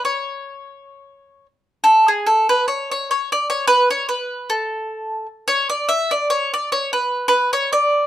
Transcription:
mandolin
0.05 C#5
1.84 A4
2.08 G#4
2.27 A4
2.49 B4
2.68 C#5
2.91 C#5
3.11 C#5
3.32 D5
3.50 C#5
3.67 B4
3.90 C#5
4.09 B4
4.50 A4
5.48 C#5
5.70 D5
5.89 E5
6.11 D5
6.30 C#5
6.54 D5
6.72 C#5
6.93 B4
7.28 B4
7.53 C#5
7.73 D5

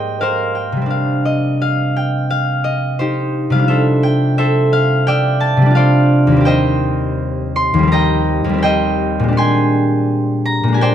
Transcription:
harp
Already playing: G#2 G3 A#3 D#4 G4 G#4 A#4 C5 D#5 G5
0.21 A#4 C5 F5
0.55 G5
0.72 C3
0.77 G3
0.82 C4
0.86 D4
0.90 F5
1.25 D#5
1.62 F5
1.96 G5
2.30 F5
2.64 D#5
2.99 D#4 G4 C5
3.50 C3 F5
3.54 G3
3.59 D4
3.64 F4
3.68 A4 C5 E5
4.03 G5
4.38 A4 C5 E5
4.73 F5
5.07 D5 E5 G5
5.40 A5
5.57 C3
5.62 G3
5.66 D4
5.70 F4
5.75 C5 D5 F5
6.27 D#2
6.32 G3
6.37 C4
6.41 G4
6.45 C5 D#5 G5
7.56 C6
7.74 D#2
7.79 G3
7.83 C4
7.87 G4
7.92 D#5 G5 A#5
8.44 D#2
8.49 G3
8.54 C4
8.58 G4
8.63 C5 D#5 G5
9.20 A#2 G#3
9.28 D4
9.33 G4
9.37 G5 G#5 C6
10.46 A#5
10.63 A#2
10.68 G#3
10.73 D4 G#5
10.77 G4
10.81 C5 D5 G5

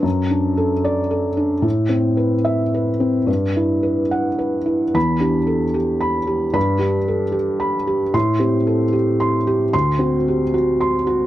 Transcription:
felt piano
0.02 F#2
0.30 D4
0.57 A4
0.84 D5
1.11 A4
1.37 D4
1.62 A2
1.89 C4
2.17 B4
2.45 E5
2.74 B4
3.00 C4
3.27 G2
3.56 E4
3.83 B4
4.11 F#5
4.39 B4
4.66 E4
4.94 E2 B5
5.20 D4 G4
5.47 A4
5.74 G4
6.01 B5
6.27 G4
6.53 G2 B5
6.78 D4 G4
7.08 A4
7.32 G4
7.60 B5
7.87 G4
8.14 A2 C6
8.39 C4 G4
8.67 A4
8.93 G4
9.20 C6
9.47 G4
9.73 D2 C6
9.99 C4 F#4
10.28 G4
10.54 F#4
10.81 C6
11.07 F#4

